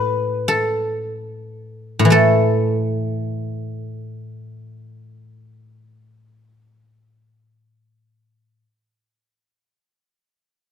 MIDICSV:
0, 0, Header, 1, 2, 480
1, 0, Start_track
1, 0, Tempo, 1639344
1, 620, Time_signature, 4, 2, 24, 8
1, 1102, Tempo, 1591512
1, 2062, Tempo, 1634877
1, 2542, Tempo, 1685393
1, 3150, End_track
2, 0, Start_track
2, 0, Title_t, "Guzheng"
2, 0, Program_c, 0, 107
2, 0, Note_on_c, 0, 45, 43
2, 0, Note_on_c, 0, 69, 59
2, 0, Note_on_c, 0, 71, 66
2, 140, Note_off_c, 0, 69, 0
2, 141, Note_on_c, 0, 69, 54
2, 511, Note_off_c, 0, 71, 0
2, 580, Note_off_c, 0, 45, 0
2, 584, Note_on_c, 0, 45, 39
2, 600, Note_on_c, 0, 52, 39
2, 616, Note_on_c, 0, 57, 40
2, 619, Note_off_c, 0, 69, 0
2, 620, Note_on_c, 0, 69, 58
2, 2000, Note_off_c, 0, 69, 0
2, 2301, Note_off_c, 0, 57, 0
2, 2554, Note_off_c, 0, 45, 0
2, 2570, Note_off_c, 0, 52, 0
2, 3150, End_track
0, 0, End_of_file